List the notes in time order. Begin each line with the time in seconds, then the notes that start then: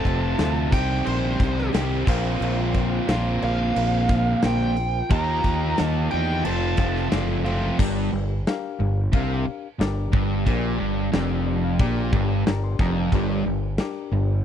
Already playing: F2 C3 F3 A3 C4 F4 A4 C5 A5
0.04 F1 C4 F4 A4, kick, crash
0.38 D2 F3 C4 F4 A4 C5, snare, crash
0.71 C2 C3 D#3 G3 C4 D#4 G4 C5 G5, kick, crash
1.05 A#1 G3 D#4 C5, crash
1.39 C2 C4 D#4 G4, kick, snare, crash
1.58 snare
1.73 C2 C3 D#3 G3 C4 D#4 G4 C5, snare, crash
2.06 A#1 A#2 F3 A#3 C4 F4 A#4 C5, kick, crash
2.40 A#1 A#3 C4 F4 A#4, crash
2.74 C4 F4 A#4, kick, crash
3.07 A#1 A#2 F3 A#3 C4 F4 A#4 C5, snare, crash
3.42 A#1 C4 F4 A#4 F5, crash
3.75 A#1 A#3 C4 F4 A#4 C5, crash
4.09 C4 F4 A#4, kick, snare, crash
4.42 A#1 A#3 C4 F4 A#4 C5 G5, snare, crash
4.76 C4 F4 A#4, crash
5.10 D#2 D#3 F3 A#3 D#4 F4 G4 D#5 A#5, kick, crash
5.43 D#2 A#3 F4 G4, kick, crash
5.76 D#3 F3 A#3 F4 G4 D#5, snare, crash
5.80 D#2 A5
6.10 E2 D#3 A#3 D#4 F4 G4 G5, crash
6.43 F1 F2 C3 F3 A3 C4 F4 A4 C5 A5, crash
6.47 F4
6.77 F1 C4 F4 A4, kick, snare, crash
6.96 snare
7.12 F#1 F3 C4 F4 A4 D5, snare, crash
7.45 F2 C3 F3 A3 C4 F4 A4, crash
7.49 C4
7.79 G1 G2 D4 G4 A#4 D5, kick, crash
8.12 G1 G2
8.47 D4 G4 A#4 F5, snare, crash
8.80 G1 G2
9.12 C2 C3 D4 G4 A#4 F5, kick, crash
9.46 muted overdriven electric guitar stroke, muted fingered electric bass stroke
9.79 G1 G2 D4 G4 A#4 D5, snare, crash
10.12 G1 G2, kick
10.46 A#1 A#2 D4 G4 A#4 D5, kick, crash
10.78 G1 G2
11.12 F1 F2 D4 G4 A#4 D5, snare, crash
11.46 D5
11.64 F5
11.79 A#1 A#2 D4 G4 A#4 D5 G5, kick, crash
12.12 G1 G2 A5, kick
12.46 G2 D4 G4 A#4 D5 A#5, snare, crash
12.64 C6
12.79 F1 F2 A#5, kick, snare
13.12 G1 G2 D4 G4 A#4 D5, kick, crash
13.46 G1 G2
13.78 D4 G4 A#4 D5, snare, crash
14.12 G1 G2